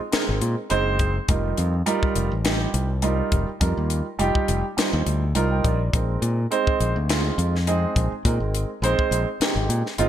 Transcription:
0.12 grand piano G#3 C4 D#4 A#4, muted fingered electric bass stroke, snare, closed hi-hat
0.29 fingered electric bass G#1
0.41 fingered electric bass A#2, closed hi-hat
0.70 fingered electric bass F#1, grand piano G#3 C4 D#4 C5, closed hi-hat
0.99 kick, closed hi-hat
1.28 fingered electric bass F1, grand piano G3 D#4 F4 A#4, kick, closed hi-hat
1.57 fingered electric bass F2, closed hi-hat
1.86 grand piano G3 D#4 F4 A#4, closed hi-hat
2.03 muted fingered electric bass stroke, kick
2.16 fingered electric bass F1, closed hi-hat
2.32 fingered electric bass A1
2.44 grand piano G3 D#4 F4 G4, snare, closed hi-hat
2.74 fingered electric bass C2, closed hi-hat
3.02 grand piano G3 D#4 F4 A#4, closed hi-hat
3.32 fingered electric bass F1, kick, closed hi-hat
3.49 muted fingered electric bass stroke
3.60 fingered electric bass F2, grand piano G3 D#4 F4 A#4, kick, closed hi-hat
3.77 fingered electric bass D#2
3.90 closed hi-hat
4.19 fingered electric bass F1, grand piano G3 D#4 F4 G4, closed hi-hat
4.35 kick
4.48 fingered electric bass F1, closed hi-hat
4.77 grand piano G3 D#4 F4 C5, muted fingered electric bass stroke, snare, closed hi-hat
4.93 fingered electric bass D#2
5.06 fingered electric bass D2, closed hi-hat
5.35 fingered electric bass C2, grand piano G3 D#4 F4 A#4 A#5, closed hi-hat
5.51 grand piano G5
5.64 fingered electric bass A#1, grand piano D5, kick, closed hi-hat
5.93 fingered electric bass A#1, grand piano G#3 C4 D#4 A#4, kick, closed hi-hat
6.22 fingered electric bass A#2, closed hi-hat
6.51 grand piano G#3 C4 D#4 C5, closed hi-hat
6.67 muted fingered electric bass stroke, kick
6.80 fingered electric bass A#1, closed hi-hat
6.96 fingered electric bass D2
7.09 grand piano G#3 C4 D#4 F4, snare, closed hi-hat
7.38 fingered electric bass F2, closed hi-hat
7.56 snare
7.67 grand piano G#3 C4 D#4 G#4, closed hi-hat
7.96 fingered electric bass A#1, kick, closed hi-hat
8.12 muted fingered electric bass stroke
8.25 fingered electric bass A#2, grand piano G#3 C4 D#4 A#4, kick, closed hi-hat
8.40 fingered electric bass G#1
8.55 closed hi-hat
8.82 fingered electric bass A#1, grand piano G#3 C4 D#4 C5, closed hi-hat
8.99 muted fingered electric bass stroke, kick
9.11 fingered electric bass A#1, closed hi-hat
9.40 grand piano G#3 C4 D#4 G4, muted fingered electric bass stroke, snare, closed hi-hat
9.56 fingered electric bass G#1
9.69 fingered electric bass A#2, closed hi-hat
9.86 snare
9.98 fingered electric bass G1, grand piano G#3 C4 D#4 F4, closed hi-hat

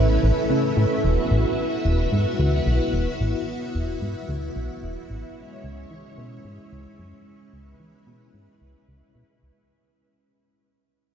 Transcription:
Already playing: analog synth bass A1, string machine A3 C#4 E4 B4 E5
0.23 analog synth bass A1
0.50 analog synth bass C#3
0.77 analog synth bass A2
1.04 analog synth bass E1, string machine B3 E4 F#4 F#5
1.31 analog synth bass A1
1.85 analog synth bass E1
2.12 analog synth bass G#2
2.39 analog synth bass D2
2.66 analog synth bass B1
2.93 analog synth bass E1
3.20 analog synth bass A1
3.74 analog synth bass E1
4.01 analog synth bass G#2
4.28 analog synth bass D2
4.56 analog synth bass B1
4.82 analog synth bass E1
5.09 analog synth bass A1
5.36 string machine G#3 C#4 C#5
5.64 analog synth bass C#2
5.91 analog synth bass E3
6.18 analog synth bass B2
6.44 analog synth bass G#2
6.72 analog synth bass C#2
6.99 analog synth bass F#2
7.53 analog synth bass C#2, string machine B4
7.80 analog synth bass E3
8.07 analog synth bass B2
8.34 analog synth bass G#2
8.61 analog synth bass C#2
8.88 analog synth bass C#2
9.15 analog synth bass B2
9.42 analog synth bass C#2

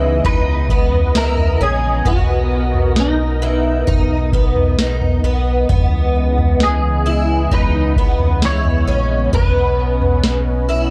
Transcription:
Already playing: fingered electric bass C#2, analog synth pad C#3 E3 G#3 B3 D#5, twelve-string acoustic guitar E3, clean electric guitar D#4
0.24 fingered electric bass C#2, twelve-string acoustic guitar D#4, clean electric guitar B4, kick, floor tom
0.69 twelve-string acoustic guitar B3, kick
0.93 floor tom
1.15 twelve-string acoustic guitar E4, clean electric guitar A#4, snare
1.37 floor tom
1.60 fingered electric bass A#1, twelve-string acoustic guitar C#4, clean electric guitar G#4
2.05 fingered electric bass B1, twelve-string acoustic guitar B3, clean electric guitar F#4, analog synth pad A#4, kick, floor tom
2.74 floor tom
2.96 clean electric guitar D#4, snare
3.42 twelve-string acoustic guitar E3
3.87 fingered electric bass B1, twelve-string acoustic guitar D#4, kick, floor tom
4.33 twelve-string acoustic guitar B3, kick
4.56 floor tom
4.79 twelve-string acoustic guitar D#4, snare
5.01 floor tom
5.23 fingered electric bass B1, twelve-string acoustic guitar B3
5.69 fingered electric bass C#2, analog synth pad C#3 E3 G#3, twelve-string acoustic guitar B3, kick, floor tom
6.38 floor tom
6.60 clean electric guitar G#4, snare
7.06 twelve-string acoustic guitar E4
7.51 fingered electric bass C#2, twelve-string acoustic guitar D#4, clean electric guitar B4, kick, floor tom
7.96 twelve-string acoustic guitar B3, kick
8.20 floor tom
8.42 twelve-string acoustic guitar E4, clean electric guitar C#5, snare
8.65 floor tom
8.87 fingered electric bass A#1, twelve-string acoustic guitar C#4
9.33 fingered electric bass B1, twelve-string acoustic guitar B3, analog synth pad C#4, clean electric guitar B4, kick, floor tom
10.02 floor tom
10.24 snare
10.69 twelve-string acoustic guitar E4

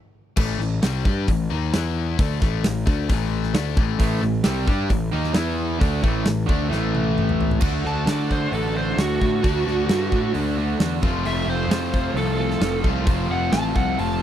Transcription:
0.37 picked electric bass A1, overdriven electric guitar A2 E3 A3, kick, crash
0.59 picked electric bass A1, overdriven electric guitar A2 E3, snare
0.82 picked electric bass C2, overdriven electric guitar C3 G3 C4, snare, open hi-hat
1.05 picked electric bass G2, overdriven electric guitar G3 D4 G4, kick
1.28 picked electric bass A1, overdriven electric guitar A2 E3, kick, open hi-hat
1.50 picked electric bass D#2, overdriven electric guitar D#3 A#3 D#4
1.73 picked electric bass E2, overdriven electric guitar E3 B3 E4, snare, open hi-hat
2.19 picked electric bass D2, overdriven electric guitar D3 A3 D4, kick, open hi-hat
2.40 picked electric bass A1, overdriven electric guitar A2 E3 A3, kick, snare
2.64 picked electric bass A1, overdriven electric guitar A2 E3, snare, open hi-hat
2.86 picked electric bass D2, overdriven electric guitar D3 A3 D4, kick
3.09 picked electric bass A1, overdriven electric guitar A2 E3 A3, kick, open hi-hat
3.43 snare
3.54 picked electric bass D2, overdriven electric guitar D3 A3 D4, snare, open hi-hat
3.77 picked electric bass A1, overdriven electric guitar A2 E3 A3, kick
3.99 picked electric bass A1, overdriven electric guitar A2 E3 A3, kick, open hi-hat
4.22 picked electric bass A1, overdriven electric guitar A2 E3, snare
4.44 picked electric bass C2, overdriven electric guitar C3 G3 C4, snare, open hi-hat
4.66 picked electric bass G2, overdriven electric guitar G3 D4 G4, kick
4.89 picked electric bass A1, overdriven electric guitar A2 E3, kick, open hi-hat
5.12 picked electric bass D#2, overdriven electric guitar D#3 A#3 D#4
5.24 snare
5.33 picked electric bass E2, overdriven electric guitar E3 B3 E4, snare, open hi-hat
5.79 picked electric bass D2, overdriven electric guitar D3 A3 D4, kick, open hi-hat
6.02 picked electric bass A1, overdriven electric guitar A2 E3 A3, kick
6.24 picked electric bass A1, overdriven electric guitar A2 E3, snare, open hi-hat
6.46 picked electric bass D2, overdriven electric guitar D3 A3 D4, kick
6.69 picked electric bass A1, overdriven electric guitar A2 E3 A3, snare
6.95 high tom
7.18 mid tom
7.29 mid tom
7.41 floor tom
7.51 floor tom
7.60 picked electric bass D2, overdriven electric guitar D3 A3 D4 F#4, kick, crash
7.84 picked electric bass D2, overdriven electric guitar A3 D4 F#4, lead electric guitar A5, snare
8.05 overdriven electric guitar D3 A3 D4 F#4, picked electric bass D3, lead electric guitar D5, snare, open hi-hat
8.28 overdriven electric guitar A3 D4 F#4, lead electric guitar C5, kick
8.52 picked electric bass A1, overdriven electric guitar D3 A3 D4 F#4, lead electric guitar A4, open hi-hat
8.75 overdriven electric guitar D3 A3 D4 F#4, lead electric guitar C5
8.97 picked electric bass D2, overdriven electric guitar D3 A3 D4 F#4, lead electric guitar F#4, snare, open hi-hat
9.21 picked electric bass A2, overdriven electric guitar A3 D4 F#4, kick
9.43 picked electric bass D2, overdriven electric guitar D3 A3 D4 F#4, kick, open hi-hat
9.65 picked electric bass D2, overdriven electric guitar A3 D4 F#4, snare
9.87 picked electric bass G2, overdriven electric guitar D3 A3 D4 F#4, snare, open hi-hat
10.11 picked electric bass A2, overdriven electric guitar A3 D4 F#4, kick
10.32 picked electric bass D2, overdriven electric guitar D3 A3 D4 F#4, open hi-hat
10.56 overdriven electric guitar D3 A3 D4 F#4
10.79 picked electric bass E2, overdriven electric guitar D3 A3 D4 F#4, snare, open hi-hat
11.02 picked electric bass F1, overdriven electric guitar F2 C3 F3 A3 C4 F4, kick
11.25 picked electric bass F1, overdriven electric guitar F3 A3 C4 F4, lead electric guitar E5, open hi-hat
11.46 picked electric bass F1, overdriven electric guitar A3 C4 F4, lead electric guitar C5
11.68 picked electric bass F2, overdriven electric guitar F3 A3 C4 F4, snare, open hi-hat
11.92 overdriven electric guitar A3 C4 F4, kick
12.14 picked electric bass C2, overdriven electric guitar F3 A3 C4 F4, lead electric guitar A4, open hi-hat
12.36 overdriven electric guitar F3 A3 C4 F4
12.41 lead electric guitar A4
12.51 snare
12.60 picked electric bass F1, overdriven electric guitar F3 A3 C4 F4, snare, open hi-hat
12.81 picked electric bass C2, overdriven electric guitar F2 C3 F3 A3 C4 F4, kick
12.87 overdriven electric guitar F4
13.05 picked electric bass F1, overdriven electric guitar F3 A3 C4 F4, kick, open hi-hat
13.29 picked electric bass F1, overdriven electric guitar A3 C4 F4, lead electric guitar F#5
13.50 picked electric bass A1, overdriven electric guitar F3 A3 C4 F4, lead electric guitar A5, snare, open hi-hat
13.74 picked electric bass C2, overdriven electric guitar A3 C4 F4, lead electric guitar F#5, kick
13.96 picked electric bass F1, overdriven electric guitar F3 A3 C4 F4, open hi-hat
14.00 lead electric guitar A5
14.18 overdriven electric guitar F4

